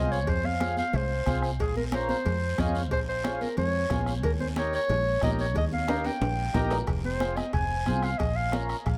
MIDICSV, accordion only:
0, 0, Header, 1, 2, 480
1, 0, Start_track
1, 0, Key_signature, -4, "minor"
1, 0, Tempo, 329852
1, 410, Time_signature, 4, 2, 24, 8
1, 13063, End_track
2, 0, Start_track
2, 0, Title_t, "Accordion"
2, 0, Program_c, 0, 21
2, 0, Note_on_c, 0, 60, 73
2, 0, Note_on_c, 0, 65, 67
2, 0, Note_on_c, 0, 68, 77
2, 265, Note_off_c, 0, 60, 0
2, 268, Note_off_c, 0, 65, 0
2, 270, Note_off_c, 0, 68, 0
2, 877, Note_on_c, 0, 60, 61
2, 890, Note_on_c, 0, 65, 62
2, 896, Note_on_c, 0, 68, 72
2, 1220, Note_off_c, 0, 60, 0
2, 1226, Note_off_c, 0, 65, 0
2, 1229, Note_off_c, 0, 68, 0
2, 1847, Note_on_c, 0, 60, 78
2, 1853, Note_on_c, 0, 65, 76
2, 1857, Note_on_c, 0, 68, 86
2, 2184, Note_off_c, 0, 60, 0
2, 2187, Note_off_c, 0, 65, 0
2, 2189, Note_off_c, 0, 68, 0
2, 2803, Note_on_c, 0, 65, 63
2, 2804, Note_on_c, 0, 61, 63
2, 2814, Note_on_c, 0, 70, 75
2, 3142, Note_off_c, 0, 65, 0
2, 3143, Note_off_c, 0, 61, 0
2, 3148, Note_off_c, 0, 70, 0
2, 3768, Note_on_c, 0, 61, 79
2, 3772, Note_on_c, 0, 65, 71
2, 3777, Note_on_c, 0, 68, 81
2, 4105, Note_off_c, 0, 61, 0
2, 4106, Note_off_c, 0, 65, 0
2, 4109, Note_off_c, 0, 68, 0
2, 4710, Note_on_c, 0, 61, 73
2, 4720, Note_on_c, 0, 65, 69
2, 4721, Note_on_c, 0, 68, 79
2, 5055, Note_off_c, 0, 61, 0
2, 5060, Note_off_c, 0, 65, 0
2, 5060, Note_off_c, 0, 68, 0
2, 5676, Note_on_c, 0, 61, 82
2, 5680, Note_on_c, 0, 65, 79
2, 5680, Note_on_c, 0, 68, 85
2, 6018, Note_off_c, 0, 61, 0
2, 6020, Note_off_c, 0, 65, 0
2, 6020, Note_off_c, 0, 68, 0
2, 6645, Note_on_c, 0, 63, 75
2, 6653, Note_on_c, 0, 67, 67
2, 6656, Note_on_c, 0, 70, 74
2, 6982, Note_off_c, 0, 63, 0
2, 6986, Note_off_c, 0, 67, 0
2, 6988, Note_off_c, 0, 70, 0
2, 7598, Note_on_c, 0, 63, 83
2, 7607, Note_on_c, 0, 67, 72
2, 7613, Note_on_c, 0, 70, 84
2, 7938, Note_off_c, 0, 63, 0
2, 7943, Note_off_c, 0, 67, 0
2, 7946, Note_off_c, 0, 70, 0
2, 8553, Note_on_c, 0, 63, 68
2, 8554, Note_on_c, 0, 67, 61
2, 8562, Note_on_c, 0, 70, 77
2, 8896, Note_off_c, 0, 63, 0
2, 8897, Note_off_c, 0, 67, 0
2, 8901, Note_off_c, 0, 70, 0
2, 9518, Note_on_c, 0, 63, 86
2, 9518, Note_on_c, 0, 67, 79
2, 9523, Note_on_c, 0, 70, 109
2, 9859, Note_off_c, 0, 63, 0
2, 9859, Note_off_c, 0, 67, 0
2, 9861, Note_off_c, 0, 70, 0
2, 10468, Note_on_c, 0, 60, 67
2, 10481, Note_on_c, 0, 65, 57
2, 10485, Note_on_c, 0, 68, 73
2, 10814, Note_off_c, 0, 60, 0
2, 10821, Note_off_c, 0, 65, 0
2, 10823, Note_off_c, 0, 68, 0
2, 11437, Note_on_c, 0, 60, 84
2, 11444, Note_on_c, 0, 65, 70
2, 11448, Note_on_c, 0, 68, 91
2, 11779, Note_off_c, 0, 60, 0
2, 11782, Note_off_c, 0, 65, 0
2, 11784, Note_off_c, 0, 68, 0
2, 12403, Note_on_c, 0, 61, 64
2, 12405, Note_on_c, 0, 65, 63
2, 12418, Note_on_c, 0, 70, 78
2, 12743, Note_off_c, 0, 61, 0
2, 12744, Note_off_c, 0, 65, 0
2, 12750, Note_off_c, 0, 70, 0
2, 13063, End_track
0, 0, End_of_file